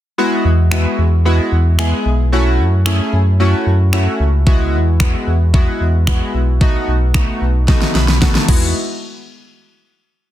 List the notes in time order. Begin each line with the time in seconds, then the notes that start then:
0.18 G#3 B3 E4 F#4
0.45 E2
0.71 G#3 B3 E4 F#4, finger snap
0.98 E2
1.25 G#3 B3 E4 F#4
1.52 E2
1.79 G#3 B3 E4 G#4, finger snap
2.06 B1
2.32 A3 C#4 E4 F#4
2.59 F#2
2.86 A3 C#4 E4 G#4, finger snap
3.13 F#2
3.40 A3 C#4 E4 F#4
3.66 F#2
3.93 A3 C#4 E4 F#4, finger snap
4.20 C#2
4.47 G#3 B3 E4 F#4, kick
4.73 E2
5.00 G#3 B3 E4 F#4, finger snap, kick
5.27 E2
5.54 G#3 B3 E4 F#4, kick
5.80 E2
6.07 G#3 B3 E4 F#4, finger snap, kick
6.34 B1
6.61 A3 B3 D#4 F#4, kick
6.88 B1
7.14 A3 B3 D#4 F#4, finger snap, kick
7.41 B1
7.68 A3 B3 D#4 F#4, kick, snare
7.82 snare
7.95 B1 B5, snare
8.08 snare
8.21 A3 B3 D#4 F#4 A5, kick, snare
8.35 snare
8.48 E2 G#3 B3 E4 F#4, kick, crash